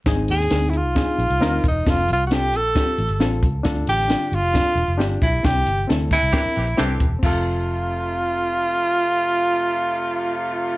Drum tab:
CC |----------------|----------------|----------------|----------------|
HH |x-x-x-x-x-xxx-x-|x-x-x-x-x-xxx-x-|x-x-x-x-x-x-x-x-|x-x-x-x-x-xxx-x-|
SD |o--oo---o---o---|o---o---o---o---|o--oo---o---o---|o---o---o---o---|
BD |o-------o-----o-|o-------o-----o-|o-------o-----o-|o-----o-o-----o-|

CC |x---------------|----------------|
HH |----------------|----------------|
SD |----------------|----------------|
BD |o---------------|----------------|